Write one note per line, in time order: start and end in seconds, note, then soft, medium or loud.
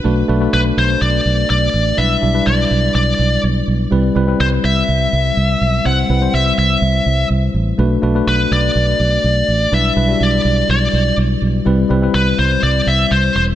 0.04 0.22 B1 medium
0.04 0.25 A3 medium
0.04 0.25 D4 medium
0.04 0.25 F#4 medium
0.04 0.25 B4 medium
0.28 0.47 B1 medium
0.28 0.39 A3 medium
0.28 0.39 D4 medium
0.28 0.39 F#4 medium
0.28 0.39 B4 medium
0.41 1.23 A3 medium
0.41 1.23 D4 medium
0.41 1.23 F#4 medium
0.41 1.23 B4 medium
0.53 0.71 B1 medium
0.53 0.60 B4 medium
0.77 0.95 B1 medium
0.77 1.01 C5 medium
1.02 1.19 B1 loud
1.02 1.49 D5 medium
1.26 1.43 B1 medium
1.50 1.67 B1 loud
1.50 2.00 D5 medium
1.74 1.91 A1 medium
1.97 2.16 B1 medium
1.97 2.18 G3 medium
1.97 2.18 D4 medium
1.97 2.19 E4 medium
1.97 2.19 B4 medium
1.97 2.48 E5 loud
2.22 2.40 B1 medium
2.22 2.32 G3 medium
2.22 2.32 D4 medium
2.22 2.33 E4 medium
2.22 2.33 D5 medium
2.34 3.16 G3 medium
2.34 3.17 D4 medium
2.34 3.17 E4 medium
2.34 3.17 B4 medium
2.47 2.64 B1 loud
2.47 2.92 D5 medium
2.71 2.88 B1 medium
2.95 3.12 B1 medium
2.95 3.40 D5 medium
3.19 3.37 B1 medium
3.44 3.61 B1 medium
3.68 3.85 B1 medium
3.91 4.09 C2 medium
3.91 4.12 G3 medium
3.91 4.12 C4 medium
3.91 4.12 E4 medium
3.91 4.13 B4 medium
4.15 4.33 C2 medium
4.15 4.26 G3 medium
4.15 4.26 C4 medium
4.15 4.26 E4 medium
4.15 4.27 B4 medium
4.27 5.10 G3 medium
4.27 5.10 C4 medium
4.27 5.10 E4 medium
4.27 5.11 B4 medium
4.40 4.58 C2 loud
4.40 4.47 C5 medium
4.64 4.82 C2 medium
4.64 5.86 E5 medium
4.89 5.06 C2 medium
5.13 5.30 C2 medium
5.37 5.54 C2 medium
5.61 5.79 B1 medium
5.85 6.03 C2 loud
5.85 6.06 G3 medium
5.85 6.06 C4 medium
5.85 6.06 E4 medium
5.85 6.06 C5 medium
5.85 6.34 F#5 loud
6.09 6.27 C2 medium
6.09 6.20 G3 medium
6.09 6.20 C4 medium
6.09 6.20 E4 medium
6.09 6.20 B4 medium
6.21 7.04 G3 medium
6.21 7.04 C4 medium
6.21 7.04 E4 medium
6.21 7.04 C5 medium
6.34 6.51 C2 medium
6.34 6.57 E5 medium
6.58 6.75 C2 medium
6.58 7.27 E5 medium
6.82 6.99 C2 medium
7.06 7.24 C2 medium
7.30 7.48 C2 medium
7.54 7.72 A1 medium
7.78 7.96 B1 loud
7.78 7.99 A3 medium
7.78 7.99 D4 medium
7.78 7.99 F#4 medium
7.78 8.00 B4 medium
8.02 8.20 B1 medium
8.02 8.13 A3 medium
8.02 8.13 D4 medium
8.02 8.13 F#4 medium
8.02 8.13 B4 medium
8.14 8.97 A3 medium
8.14 8.97 D4 medium
8.14 8.97 F#4 medium
8.14 8.98 B4 medium
8.27 8.45 B1 medium
8.27 8.52 B4 medium
8.51 8.69 B1 medium
8.51 9.77 D5 medium
8.76 8.93 B1 medium
9.00 9.17 B1 medium
9.24 9.42 B1 loud
9.48 9.66 A1 medium
9.72 9.90 B1 medium
9.72 9.93 G3 medium
9.72 9.93 D4 medium
9.72 9.93 E4 medium
9.72 9.93 B4 medium
9.72 10.23 E5 loud
9.96 10.14 B1 medium
9.96 10.07 G3 medium
9.96 10.07 D4 medium
9.96 10.07 E4 medium
9.96 10.07 B4 medium
10.08 10.91 G3 medium
10.08 10.91 D4 medium
10.08 10.91 E4 medium
10.08 10.91 F#4 medium
10.21 10.38 B1 loud
10.21 10.69 D5 medium
10.45 10.62 B1 medium
10.69 10.87 B1 loud
10.69 11.15 D5 medium
10.93 11.11 B1 medium
11.18 11.35 B1 medium
11.42 11.59 B1 medium
11.66 11.84 C2 loud
11.66 11.86 G3 medium
11.66 11.87 C4 medium
11.66 11.87 E4 medium
11.66 11.87 B4 medium
11.90 12.08 C2 medium
11.90 12.00 G3 medium
11.90 12.00 C4 medium
11.90 12.01 E4 medium
11.90 12.01 B4 medium
12.02 12.84 G3 medium
12.02 12.85 C4 medium
12.02 12.85 E4 medium
12.02 12.85 B4 medium
12.14 12.32 C2 loud
12.14 12.39 B4 medium
12.39 12.56 C2 medium
12.39 12.63 C5 medium
12.63 12.80 C2 medium
12.63 12.88 D5 loud
12.87 13.04 C2 medium
12.87 13.12 E5 medium
13.11 13.29 C2 medium
13.11 13.35 C5 medium
13.35 13.53 E1 medium
13.35 13.43 C5 medium